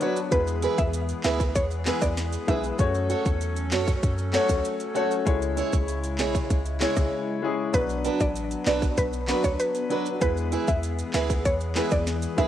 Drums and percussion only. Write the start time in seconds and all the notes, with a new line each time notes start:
0.01 closed hi-hat
0.16 maracas
0.31 kick, closed hi-hat, maracas
0.47 maracas
0.62 closed hi-hat, maracas
0.78 kick, maracas
0.93 closed hi-hat, maracas
1.09 closed hi-hat, maracas
1.24 snare, clap, closed hi-hat, maracas
1.40 kick, maracas
1.55 kick, closed hi-hat, maracas
1.71 maracas
1.86 snare, clap, closed hi-hat, maracas
2.01 kick, maracas
2.17 snare, closed hi-hat, maracas
2.33 closed hi-hat, maracas
2.48 kick, closed hi-hat, high timbale
2.64 maracas
2.79 kick, closed hi-hat, maracas
2.95 maracas
3.10 closed hi-hat, maracas
3.25 kick, maracas
3.41 closed hi-hat, maracas
3.56 closed hi-hat, maracas
3.71 snare, clap, closed hi-hat, maracas
3.87 kick, maracas
4.03 kick, closed hi-hat, maracas
4.18 maracas
4.33 snare, clap, closed hi-hat, maracas
4.49 kick, maracas
4.65 closed hi-hat, maracas
4.80 closed hi-hat, maracas
4.96 closed hi-hat
5.11 maracas
5.26 kick, closed hi-hat, maracas
5.42 closed hi-hat, maracas
5.57 closed hi-hat, maracas
5.73 kick, maracas
5.88 closed hi-hat, maracas
6.04 closed hi-hat, maracas
6.18 snare, clap, closed hi-hat, maracas
6.35 kick, maracas
6.50 kick, closed hi-hat, maracas
6.66 closed hi-hat, maracas
6.80 snare, clap, closed hi-hat, maracas
6.96 kick, cross-stick, maracas
7.74 kick, closed hi-hat, maracas
7.89 maracas
8.05 closed hi-hat, maracas
8.20 kick, maracas
8.36 closed hi-hat, maracas
8.51 closed hi-hat, maracas
8.66 snare, clap, closed hi-hat, maracas
8.82 kick, maracas
8.98 kick, closed hi-hat, maracas
9.13 maracas
9.28 snare, clap, closed hi-hat, maracas
9.44 kick, maracas
9.60 closed hi-hat, maracas
9.75 closed hi-hat, maracas
9.90 closed hi-hat
10.06 maracas
10.21 kick, closed hi-hat, maracas
10.37 maracas
10.52 closed hi-hat, maracas
10.68 kick, maracas
10.83 closed hi-hat, maracas
10.98 closed hi-hat, maracas
11.13 snare, clap, closed hi-hat, maracas
11.30 kick, maracas
11.45 kick, closed hi-hat, maracas
11.60 maracas
11.75 snare, clap, closed hi-hat, maracas
11.91 kick, maracas
12.07 snare, closed hi-hat, maracas
12.22 closed hi-hat, maracas
12.38 kick, closed hi-hat, high timbale